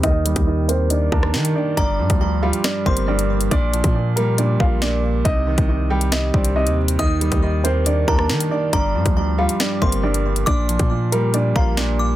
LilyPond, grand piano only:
\new Staff \with { instrumentName = "Grand piano" } { \time 4/4 \key g \minor \tempo 4 = 138 <ees' ees''>4. <c' c''>8 <d' d''>8 <bes bes'>4 <d' d''>8 | <d' d''>4. <f' f''>8 <d' d''>8 <c' c''>8 <d' d''>8 r8 | <d' d''>4. <bes bes'>8 <d' d''>8 <f' f''>8 <d' d''>8 r8 | <ees' ees''>4. <g' g''>8 <ees' ees''>8 <d' d''>8 <ees' ees''>8 r8 |
<ees' ees''>4. <c' c''>8 <d' d''>8 <bes bes'>4 <d' d''>8 | <d' d''>4. <f' f''>8 <d' d''>8 <c' c''>8 <d' d''>8 r8 | <d' d''>4. <bes bes'>8 <d' d''>8 <f' f''>8 <d' d''>8 r8 | }